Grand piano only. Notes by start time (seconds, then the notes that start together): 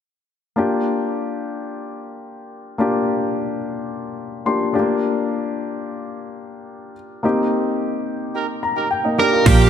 0.56 A#3 D4 F4 G4
2.78 A#3 D4 F4 G4
4.46 A#3 D4 F4 G4 C6
4.73 A3 D4 F4 G4
4.79 A#3
7.23 A#3 C4 D#4 G4
8.63 A#5
8.91 G5
9.04 A#3 D#4
9.18 D4 G4
9.32 F4 A#4
9.45 A#3 D4 F4 G4